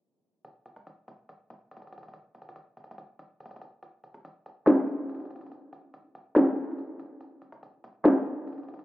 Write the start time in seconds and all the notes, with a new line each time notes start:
0.45 closed hi-hat
0.66 closed hi-hat
0.76 closed hi-hat
0.87 closed hi-hat
1.08 closed hi-hat
1.29 closed hi-hat
1.50 closed hi-hat
1.71 closed hi-hat
1.77 closed hi-hat
1.82 closed hi-hat
1.87 closed hi-hat
1.93 closed hi-hat
1.98 closed hi-hat
2.03 closed hi-hat
2.08 closed hi-hat
2.14 closed hi-hat
2.35 closed hi-hat
2.42 closed hi-hat
2.49 closed hi-hat
2.56 closed hi-hat
2.77 closed hi-hat
2.84 closed hi-hat
2.91 closed hi-hat
2.98 closed hi-hat
3.19 closed hi-hat
3.40 closed hi-hat
3.46 closed hi-hat
3.51 closed hi-hat
3.56 closed hi-hat
3.62 closed hi-hat
3.83 closed hi-hat
4.04 closed hi-hat
4.14 closed hi-hat
4.25 closed hi-hat
4.46 closed hi-hat
4.67 snare, clap, closed hi-hat
4.88 closed hi-hat
5.09 closed hi-hat
5.15 closed hi-hat
5.20 closed hi-hat
5.25 closed hi-hat
5.31 closed hi-hat
5.36 closed hi-hat
5.41 closed hi-hat
5.46 closed hi-hat
5.52 closed hi-hat
5.73 closed hi-hat
5.94 closed hi-hat
6.15 closed hi-hat
6.36 snare, clap, closed hi-hat
6.57 closed hi-hat
6.64 closed hi-hat
6.71 closed hi-hat
6.78 closed hi-hat
7.00 closed hi-hat
7.21 closed hi-hat
7.42 closed hi-hat
7.52 closed hi-hat
7.63 closed hi-hat
7.84 closed hi-hat
8.05 snare, clap, closed hi-hat
8.26 closed hi-hat
8.47 closed hi-hat
8.53 closed hi-hat
8.58 closed hi-hat
8.63 closed hi-hat
8.69 closed hi-hat
8.74 closed hi-hat
8.79 closed hi-hat